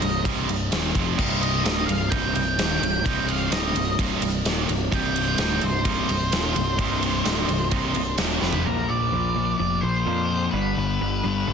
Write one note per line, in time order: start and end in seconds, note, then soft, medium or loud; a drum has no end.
0.00 0.24 C1 medium
0.00 0.21 C2 medium
0.00 0.21 G2 medium
0.00 0.22 D#5 medium
0.00 ride medium
0.24 0.47 C1 medium
0.24 0.48 C2 medium
0.24 0.55 G2 medium
0.24 0.48 G2 medium
0.24 0.55 C3 medium
0.24 0.48 C3 loud
0.24 0.56 G3 medium
0.24 0.56 D#4 medium
0.24 kick loud
0.24 ride loud
0.48 0.70 C1 medium
0.48 0.67 C2 medium
0.48 0.68 G2 medium
0.48 ride medium
0.72 0.94 D#1 medium
0.72 0.95 D#2 medium
0.72 0.95 A#2 medium
0.72 0.95 D#3 loud
0.72 snare loud
0.72 ride loud
0.95 1.17 F1 loud
0.95 1.18 F2 medium
0.95 1.18 C3 medium
0.95 1.18 F3 loud
0.95 kick medium
0.95 ride medium
1.17 1.62 C1 medium
1.17 1.65 C2 medium
1.17 1.48 G2 medium
1.17 1.65 G2 medium
1.17 1.49 C3 medium
1.17 1.66 C3 medium
1.17 1.49 G3 medium
1.17 1.49 D#4 medium
1.17 kick loud
1.17 crash medium
1.42 1.64 D#5 medium
1.42 ride medium
1.64 1.86 D1 medium
1.64 1.88 D2 medium
1.64 1.95 G2 medium
1.64 1.89 A2 loud
1.64 1.96 C3 medium
1.64 1.89 D3 loud
1.64 1.96 G3 medium
1.64 1.96 D#4 medium
1.64 1.86 D#5 medium
1.64 snare loud
1.64 ride loud
1.86 2.10 C1 medium
1.86 2.08 C2 medium
1.86 2.08 G2 medium
1.86 2.12 F5 medium
1.86 ride medium
2.10 2.34 C1 loud
2.10 2.35 C2 medium
2.10 2.42 G2 medium
2.10 2.35 G2 loud
2.10 2.35 C3 medium
2.10 2.43 C3 medium
2.10 2.43 G3 medium
2.10 2.43 D#4 medium
2.10 2.33 G5 loud
2.10 kick loud
2.10 ride loud
2.34 2.57 C1 medium
2.34 2.55 C2 medium
2.34 2.55 G2 medium
2.34 3.03 G5 medium
2.34 ride medium
2.58 2.80 D#1 medium
2.58 2.81 D#2 medium
2.58 2.81 A#2 medium
2.58 2.82 D#3 loud
2.58 snare loud
2.58 ride medium
2.81 3.03 C1 medium
2.81 3.01 C2 medium
2.81 3.01 G2 medium
2.81 ride medium
3.04 3.49 C1 medium
3.04 3.51 C2 medium
3.04 3.51 G2 medium
3.04 3.36 G2 medium
3.04 3.52 C3 loud
3.04 3.36 C3 medium
3.04 3.37 G3 medium
3.04 3.37 D#4 loud
3.04 3.29 G5 loud
3.04 kick loud
3.04 ride medium
3.27 3.52 F5 medium
3.27 ride medium
3.51 3.73 D1 loud
3.51 3.75 D2 medium
3.51 3.83 G2 medium
3.51 3.75 A2 loud
3.51 3.83 C3 loud
3.51 3.76 D3 loud
3.51 3.83 G3 loud
3.51 3.83 D#4 loud
3.51 3.96 D#5 medium
3.51 snare loud
3.51 ride loud
3.75 3.97 C1 medium
3.75 3.94 C2 medium
3.75 3.95 G2 medium
3.75 ride medium
3.99 4.20 C1 medium
3.99 4.22 C2 medium
3.99 4.29 G2 medium
3.99 4.22 G2 loud
3.99 4.30 C3 medium
3.99 4.22 C3 loud
3.99 4.30 G3 medium
3.99 4.30 D#4 medium
3.99 kick loud
3.99 ride loud
4.21 4.43 C1 medium
4.21 4.42 C2 medium
4.21 4.42 G2 medium
4.21 ride medium
4.45 4.67 D#1 medium
4.45 4.69 D#2 medium
4.45 4.69 A#2 loud
4.45 4.69 D#3 loud
4.45 snare loud
4.45 ride loud
4.68 4.90 C1 medium
4.68 4.88 C2 medium
4.68 4.89 G2 medium
4.68 ride medium
4.92 5.36 C1 loud
4.92 5.39 C2 medium
4.92 5.23 G2 medium
4.92 5.39 G2 medium
4.92 5.23 C3 medium
4.92 5.39 C3 medium
4.92 5.23 G3 medium
4.92 5.23 D#4 medium
4.92 5.39 G5 loud
4.92 kick loud
4.92 ride medium
5.16 ride medium
5.38 5.60 D1 medium
5.38 5.62 D2 medium
5.38 5.69 G2 medium
5.38 5.62 A2 loud
5.38 5.70 C3 medium
5.38 5.63 D3 loud
5.38 5.70 G3 loud
5.38 5.70 D#4 loud
5.38 5.64 G5 loud
5.38 snare loud
5.38 ride loud
5.61 5.84 C1 medium
5.61 5.82 C2 medium
5.61 5.82 G2 medium
5.61 8.15 C5 medium
5.61 ride medium
5.85 6.07 C1 medium
5.85 6.08 C2 medium
5.85 6.16 G2 medium
5.85 6.09 G2 loud
5.85 6.16 C3 medium
5.85 6.09 C3 loud
5.85 6.16 G3 medium
5.85 6.16 D#4 medium
5.85 kick loud
5.85 ride loud
6.09 6.31 C1 medium
6.09 6.28 C2 medium
6.09 6.28 G2 medium
6.09 ride medium
6.32 6.54 D#1 loud
6.32 6.55 D#2 medium
6.32 6.56 A#2 medium
6.32 6.56 D#3 medium
6.32 snare loud
6.32 ride medium
6.56 6.78 C1 medium
6.56 6.75 C2 medium
6.56 6.75 G2 medium
6.56 ride medium
6.78 7.22 C1 medium
6.78 7.25 C2 medium
6.78 7.09 G2 medium
6.78 7.26 G2 medium
6.78 7.09 C3 medium
6.78 7.26 C3 medium
6.78 7.09 G3 medium
6.78 7.09 D#4 medium
6.78 kick loud
6.78 ride medium
7.03 ride medium
7.25 7.47 D1 medium
7.25 7.48 D2 medium
7.25 7.55 G2 medium
7.25 7.49 A2 medium
7.25 7.56 C3 medium
7.25 7.49 D3 medium
7.25 7.56 G3 loud
7.25 7.56 D#4 medium
7.25 snare loud
7.25 ride loud
7.48 7.70 C1 medium
7.48 7.68 C2 medium
7.48 7.68 G2 medium
7.48 ride medium
7.71 7.94 C1 medium
7.71 7.95 C2 medium
7.71 8.02 G2 medium
7.71 7.95 G2 loud
7.71 8.02 C3 medium
7.71 7.96 C3 loud
7.71 8.03 G3 medium
7.71 8.03 D#4 medium
7.71 kick loud
7.71 ride loud
7.95 8.17 C1 medium
7.95 8.15 C2 medium
7.95 8.15 G2 medium
7.95 ride medium
8.18 8.40 D#1 loud
8.18 8.41 D#2 medium
8.18 8.42 A#2 loud
8.18 8.42 D#3 loud
8.18 snare loud
8.18 ride loud
8.41 8.67 F1 medium
8.41 8.65 F2 medium
8.41 8.65 C3 loud
8.41 8.65 F3 medium
8.41 8.66 B4 medium
8.41 snare medium
8.53 floor tom medium
8.65 8.86 A#1 medium
8.65 9.34 A#2 medium
8.65 8.87 A#2 medium
8.65 8.88 F3 medium
8.65 9.35 F3 medium
8.65 8.88 A#3 medium
8.65 9.35 A#3 medium
8.65 8.90 A#4 medium
8.88 9.10 A#1 medium
8.88 9.10 A#2 medium
8.88 9.10 F3 medium
8.88 9.56 D5 loud
9.12 9.54 A#1 medium
9.12 9.34 A#2 medium
9.12 9.34 F3 medium
9.36 9.57 A#2 medium
9.36 10.05 A#2 medium
9.36 9.57 F3 medium
9.36 10.06 F3 medium
9.36 10.05 A#3 medium
9.58 9.80 F1 medium
9.58 9.80 A#2 medium
9.58 9.81 F3 medium
9.58 9.83 D5 loud
9.81 10.04 A#1 medium
9.81 10.04 A#2 medium
9.81 10.04 F3 medium
9.81 10.51 C5 medium
10.06 10.48 F2 medium
10.06 10.28 A#2 medium
10.06 10.52 A#2 medium
10.06 10.28 F3 medium
10.06 10.52 F3 medium
10.06 10.29 A#3 medium
10.06 10.53 A#3 medium
10.31 10.51 A#2 medium
10.31 10.51 F3 medium
10.51 10.74 G1 medium
10.51 10.75 G2 medium
10.51 11.22 G2 medium
10.51 10.75 D3 medium
10.51 10.75 G3 medium
10.51 11.53 B4 medium
10.55 11.23 D3 medium
10.55 11.24 G3 medium
10.77 10.98 G1 medium
10.77 10.98 G2 medium
10.77 10.98 D3 medium
11.01 11.21 G1 medium
11.01 11.22 G2 medium
11.01 11.22 D3 medium
11.24 11.45 G1 medium
11.24 11.44 G2 medium
11.24 11.53 G2 medium
11.24 11.45 D3 medium
11.24 11.53 D3 medium
11.24 11.53 G3 medium
11.47 11.53 G1 medium
11.47 11.53 G2 medium
11.47 11.53 D3 medium